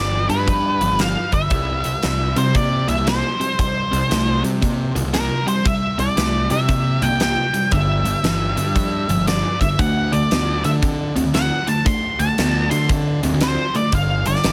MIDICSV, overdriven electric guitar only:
0, 0, Header, 1, 2, 480
1, 0, Start_track
1, 0, Tempo, 517241
1, 1406, Time_signature, 4, 2, 24, 8
1, 13479, End_track
2, 0, Start_track
2, 0, Title_t, "Overdriven electric guitar"
2, 0, Program_c, 0, 29
2, 0, Note_on_c, 0, 43, 67
2, 0, Note_on_c, 0, 52, 91
2, 240, Note_off_c, 0, 43, 0
2, 241, Note_off_c, 0, 52, 0
2, 263, Note_on_c, 0, 43, 64
2, 270, Note_on_c, 0, 50, 81
2, 422, Note_off_c, 0, 43, 0
2, 426, Note_off_c, 0, 50, 0
2, 437, Note_on_c, 0, 43, 74
2, 445, Note_on_c, 0, 53, 81
2, 719, Note_off_c, 0, 43, 0
2, 723, Note_off_c, 0, 53, 0
2, 751, Note_on_c, 0, 43, 72
2, 759, Note_on_c, 0, 53, 77
2, 907, Note_off_c, 0, 43, 0
2, 911, Note_off_c, 0, 53, 0
2, 922, Note_on_c, 0, 43, 73
2, 925, Note_on_c, 0, 53, 89
2, 1203, Note_off_c, 0, 43, 0
2, 1204, Note_off_c, 0, 53, 0
2, 1234, Note_on_c, 0, 43, 69
2, 1241, Note_on_c, 0, 50, 70
2, 1388, Note_off_c, 0, 43, 0
2, 1392, Note_off_c, 0, 50, 0
2, 1406, Note_on_c, 0, 48, 60
2, 1409, Note_on_c, 0, 55, 80
2, 1685, Note_off_c, 0, 48, 0
2, 1686, Note_off_c, 0, 55, 0
2, 1720, Note_on_c, 0, 48, 64
2, 1728, Note_on_c, 0, 55, 72
2, 1868, Note_off_c, 0, 48, 0
2, 1876, Note_off_c, 0, 55, 0
2, 1880, Note_on_c, 0, 48, 68
2, 1883, Note_on_c, 0, 57, 88
2, 2162, Note_off_c, 0, 48, 0
2, 2164, Note_off_c, 0, 57, 0
2, 2193, Note_on_c, 0, 48, 68
2, 2195, Note_on_c, 0, 55, 64
2, 2349, Note_off_c, 0, 48, 0
2, 2350, Note_off_c, 0, 55, 0
2, 2362, Note_on_c, 0, 48, 77
2, 2365, Note_on_c, 0, 58, 81
2, 2643, Note_off_c, 0, 48, 0
2, 2645, Note_off_c, 0, 58, 0
2, 2672, Note_on_c, 0, 48, 70
2, 2675, Note_on_c, 0, 58, 74
2, 2828, Note_off_c, 0, 48, 0
2, 2830, Note_off_c, 0, 58, 0
2, 2838, Note_on_c, 0, 48, 74
2, 2842, Note_on_c, 0, 58, 77
2, 3122, Note_off_c, 0, 48, 0
2, 3124, Note_off_c, 0, 58, 0
2, 3153, Note_on_c, 0, 48, 59
2, 3159, Note_on_c, 0, 55, 79
2, 3309, Note_off_c, 0, 48, 0
2, 3312, Note_off_c, 0, 55, 0
2, 3330, Note_on_c, 0, 48, 63
2, 3335, Note_on_c, 0, 55, 75
2, 3608, Note_off_c, 0, 48, 0
2, 3610, Note_off_c, 0, 55, 0
2, 3630, Note_on_c, 0, 48, 69
2, 3633, Note_on_c, 0, 55, 81
2, 3787, Note_off_c, 0, 48, 0
2, 3789, Note_off_c, 0, 55, 0
2, 3800, Note_on_c, 0, 48, 65
2, 3808, Note_on_c, 0, 57, 94
2, 4083, Note_off_c, 0, 48, 0
2, 4087, Note_off_c, 0, 57, 0
2, 4108, Note_on_c, 0, 48, 60
2, 4111, Note_on_c, 0, 55, 73
2, 4267, Note_off_c, 0, 48, 0
2, 4268, Note_off_c, 0, 55, 0
2, 4285, Note_on_c, 0, 48, 79
2, 4288, Note_on_c, 0, 58, 81
2, 4565, Note_off_c, 0, 48, 0
2, 4567, Note_off_c, 0, 58, 0
2, 4598, Note_on_c, 0, 48, 64
2, 4600, Note_on_c, 0, 58, 77
2, 4749, Note_off_c, 0, 48, 0
2, 4753, Note_off_c, 0, 58, 0
2, 4760, Note_on_c, 0, 48, 77
2, 4765, Note_on_c, 0, 58, 73
2, 5043, Note_off_c, 0, 48, 0
2, 5045, Note_off_c, 0, 58, 0
2, 5070, Note_on_c, 0, 48, 65
2, 5075, Note_on_c, 0, 55, 76
2, 5228, Note_off_c, 0, 48, 0
2, 5230, Note_off_c, 0, 55, 0
2, 5243, Note_on_c, 0, 48, 73
2, 5245, Note_on_c, 0, 55, 77
2, 5524, Note_off_c, 0, 48, 0
2, 5525, Note_off_c, 0, 55, 0
2, 5550, Note_on_c, 0, 48, 76
2, 5557, Note_on_c, 0, 55, 77
2, 5708, Note_off_c, 0, 48, 0
2, 5711, Note_off_c, 0, 55, 0
2, 5724, Note_on_c, 0, 48, 84
2, 5726, Note_on_c, 0, 57, 86
2, 6005, Note_off_c, 0, 48, 0
2, 6006, Note_off_c, 0, 57, 0
2, 6033, Note_on_c, 0, 48, 61
2, 6040, Note_on_c, 0, 55, 78
2, 6189, Note_off_c, 0, 48, 0
2, 6193, Note_off_c, 0, 55, 0
2, 6204, Note_on_c, 0, 48, 81
2, 6210, Note_on_c, 0, 58, 87
2, 6484, Note_off_c, 0, 48, 0
2, 6488, Note_off_c, 0, 58, 0
2, 6517, Note_on_c, 0, 48, 70
2, 6526, Note_on_c, 0, 58, 80
2, 6671, Note_off_c, 0, 48, 0
2, 6675, Note_off_c, 0, 58, 0
2, 6693, Note_on_c, 0, 48, 76
2, 6695, Note_on_c, 0, 58, 75
2, 6969, Note_off_c, 0, 48, 0
2, 6970, Note_off_c, 0, 58, 0
2, 6992, Note_on_c, 0, 48, 66
2, 6994, Note_on_c, 0, 55, 74
2, 7149, Note_off_c, 0, 48, 0
2, 7150, Note_off_c, 0, 55, 0
2, 7166, Note_on_c, 0, 43, 65
2, 7176, Note_on_c, 0, 50, 74
2, 7446, Note_off_c, 0, 43, 0
2, 7450, Note_off_c, 0, 50, 0
2, 7470, Note_on_c, 0, 43, 75
2, 7479, Note_on_c, 0, 50, 75
2, 7627, Note_off_c, 0, 43, 0
2, 7632, Note_off_c, 0, 50, 0
2, 7645, Note_on_c, 0, 43, 77
2, 7655, Note_on_c, 0, 52, 78
2, 7925, Note_off_c, 0, 43, 0
2, 7930, Note_off_c, 0, 52, 0
2, 7951, Note_on_c, 0, 43, 56
2, 7958, Note_on_c, 0, 50, 68
2, 8108, Note_off_c, 0, 43, 0
2, 8111, Note_off_c, 0, 50, 0
2, 8135, Note_on_c, 0, 43, 68
2, 8139, Note_on_c, 0, 53, 78
2, 8410, Note_off_c, 0, 43, 0
2, 8411, Note_off_c, 0, 53, 0
2, 8440, Note_on_c, 0, 43, 68
2, 8447, Note_on_c, 0, 53, 80
2, 8592, Note_off_c, 0, 43, 0
2, 8595, Note_off_c, 0, 53, 0
2, 8608, Note_on_c, 0, 43, 74
2, 8612, Note_on_c, 0, 53, 76
2, 8886, Note_off_c, 0, 43, 0
2, 8888, Note_off_c, 0, 53, 0
2, 8925, Note_on_c, 0, 43, 73
2, 8929, Note_on_c, 0, 50, 76
2, 9074, Note_off_c, 0, 43, 0
2, 9076, Note_off_c, 0, 50, 0
2, 9088, Note_on_c, 0, 50, 79
2, 9092, Note_on_c, 0, 57, 75
2, 9366, Note_off_c, 0, 50, 0
2, 9368, Note_off_c, 0, 57, 0
2, 9392, Note_on_c, 0, 50, 66
2, 9398, Note_on_c, 0, 57, 67
2, 9548, Note_off_c, 0, 50, 0
2, 9551, Note_off_c, 0, 57, 0
2, 9575, Note_on_c, 0, 50, 76
2, 9576, Note_on_c, 0, 59, 87
2, 9849, Note_off_c, 0, 50, 0
2, 9850, Note_off_c, 0, 59, 0
2, 9875, Note_on_c, 0, 50, 68
2, 9881, Note_on_c, 0, 57, 71
2, 10029, Note_off_c, 0, 50, 0
2, 10032, Note_off_c, 0, 57, 0
2, 10042, Note_on_c, 0, 50, 74
2, 10049, Note_on_c, 0, 60, 80
2, 10323, Note_off_c, 0, 50, 0
2, 10326, Note_off_c, 0, 60, 0
2, 10353, Note_on_c, 0, 50, 70
2, 10357, Note_on_c, 0, 60, 84
2, 10508, Note_off_c, 0, 50, 0
2, 10510, Note_off_c, 0, 60, 0
2, 10523, Note_on_c, 0, 50, 72
2, 10529, Note_on_c, 0, 60, 78
2, 10803, Note_off_c, 0, 50, 0
2, 10806, Note_off_c, 0, 60, 0
2, 10836, Note_on_c, 0, 50, 63
2, 10840, Note_on_c, 0, 57, 67
2, 10986, Note_off_c, 0, 50, 0
2, 10992, Note_off_c, 0, 57, 0
2, 10998, Note_on_c, 0, 50, 72
2, 11005, Note_on_c, 0, 57, 80
2, 11280, Note_off_c, 0, 50, 0
2, 11284, Note_off_c, 0, 57, 0
2, 11315, Note_on_c, 0, 50, 66
2, 11318, Note_on_c, 0, 57, 69
2, 11469, Note_off_c, 0, 50, 0
2, 11470, Note_off_c, 0, 57, 0
2, 11490, Note_on_c, 0, 50, 70
2, 11499, Note_on_c, 0, 59, 90
2, 11767, Note_off_c, 0, 50, 0
2, 11771, Note_off_c, 0, 59, 0
2, 11799, Note_on_c, 0, 50, 62
2, 11800, Note_on_c, 0, 57, 65
2, 11951, Note_off_c, 0, 50, 0
2, 11952, Note_off_c, 0, 57, 0
2, 11970, Note_on_c, 0, 50, 61
2, 11974, Note_on_c, 0, 60, 73
2, 12247, Note_off_c, 0, 50, 0
2, 12249, Note_off_c, 0, 60, 0
2, 12282, Note_on_c, 0, 50, 81
2, 12285, Note_on_c, 0, 60, 76
2, 12432, Note_off_c, 0, 50, 0
2, 12434, Note_off_c, 0, 60, 0
2, 12447, Note_on_c, 0, 50, 69
2, 12456, Note_on_c, 0, 60, 75
2, 12725, Note_off_c, 0, 50, 0
2, 12730, Note_off_c, 0, 60, 0
2, 12758, Note_on_c, 0, 50, 66
2, 12764, Note_on_c, 0, 57, 80
2, 12911, Note_off_c, 0, 50, 0
2, 12914, Note_off_c, 0, 57, 0
2, 12930, Note_on_c, 0, 43, 74
2, 12934, Note_on_c, 0, 50, 88
2, 13207, Note_off_c, 0, 43, 0
2, 13209, Note_off_c, 0, 50, 0
2, 13238, Note_on_c, 0, 43, 65
2, 13245, Note_on_c, 0, 50, 69
2, 13390, Note_off_c, 0, 43, 0
2, 13394, Note_off_c, 0, 50, 0
2, 13407, Note_on_c, 0, 43, 80
2, 13412, Note_on_c, 0, 52, 80
2, 13479, Note_off_c, 0, 43, 0
2, 13479, Note_off_c, 0, 52, 0
2, 13479, End_track
0, 0, End_of_file